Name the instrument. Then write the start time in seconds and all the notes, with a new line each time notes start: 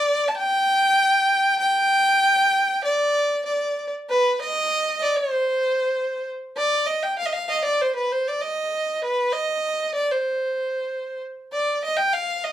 violin
Already playing: D5
0.28 A5
0.35 G5
1.59 G5
2.85 D5
3.46 D5
4.10 B4
4.42 D#5
4.99 D5 D#5
5.15 C5
6.57 D5
6.87 D#5
7.03 G5
7.18 F5
7.25 D#5
7.32 F5
7.47 D#5 F5
7.65 D5
7.82 C5
7.96 B4
8.12 C5
8.28 D5
8.41 D#5
9.04 B4
9.32 D#5
9.95 D5
10.11 C5
11.53 D5
11.85 D#5
11.97 G5
12.13 F5
12.44 D#5